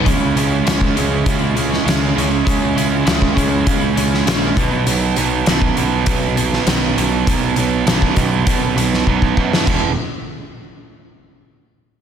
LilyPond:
<<
  \new Staff \with { instrumentName = "Clean electric guitar" } { \time 4/4 \key cis \minor \tempo 4 = 100 <cis gis cis' e'>16 <gis cis' e'>16 <cis gis cis' e'>16 <gis cis' e'>16 <cis gis cis' e'>8 <cis gis cis' e'>8. <gis cis' e'>16 <cis gis cis' e'>16 <gis cis' e'>16 <cis gis cis' e'>8 <cis gis cis' e'>16 <gis cis' e'>16 | <cis gis cis' e'>16 <gis cis' e'>16 <cis gis cis' e'>16 <gis cis' e'>16 <cis gis cis' e'>8 <cis gis cis' e'>8. <gis cis' e'>16 <cis gis cis' e'>16 <gis cis' e'>16 <cis gis cis' e'>8 <b, dis fis b dis'>16 <fis b dis'>16 | r1 | r1 |
r1 | }
  \new Staff \with { instrumentName = "Distorted electric guitar" } { \clef bass \time 4/4 \key cis \minor <cis gis cis'>8 <cis gis cis'>8 <cis gis cis'>8 <cis gis cis'>8 <cis gis cis'>8 <cis gis cis'>8 <cis gis cis'>8 <cis gis cis'>8 | <cis gis cis'>8 <cis gis cis'>8 <cis gis cis'>8 <cis gis cis'>8 <cis gis cis'>8 <cis gis cis'>8 <cis gis cis'>8 <b, fis b>8 | <b, fis b>8 <b, fis b>8 <b, fis b>8 <b, fis b>8 <b, fis b>8 <b, fis b>8 <b, fis b>8 <b, fis b>8 | <b, fis b>8 <b, fis b>8 <b, fis b>8 <b, fis b>8 <b, fis b>8 <b, fis b>8 <b, fis b>8 <b, fis b>8 |
<e, b, e>8 r2. r8 | }
  \new Staff \with { instrumentName = "Picked electric bass" } { \clef bass \time 4/4 \key cis \minor cis,8 cis,8 cis,8 cis,8 cis,4 cis,8 cis,8 | cis,8 cis,8 cis,8 cis,8 cis,8 cis,8 ais,,8 b,,8 | b,,8 b,,8 b,,8 b,,8 b,,4 b,,8 b,,8 | b,,8 b,,8 b,,8 b,,8 b,,8 b,,8 b,,8 fis,8 |
e,,8 r2. r8 | }
  \new DrumStaff \with { instrumentName = "Drums" } \drummode { \time 4/4 <hh bd>8 hh8 <hh sn>16 bd16 hh8 <hh bd>8 hh16 sn16 <hh sn>8 hh8 | <hh bd>8 hh8 <hh sn>16 bd16 <hh bd>8 <hh bd>8 hh16 sn16 <hh sn>8 <hh bd>8 | hh8 hh8 <hh sn>16 bd16 hh8 <hh bd>8 hh16 sn16 <hh sn>8 hh8 | <hh bd>8 hh8 <hh sn>16 bd16 <hh bd>8 <hh bd>8 hh16 sn16 bd16 bd16 bd16 sn16 |
<cymc bd>4 r4 r4 r4 | }
>>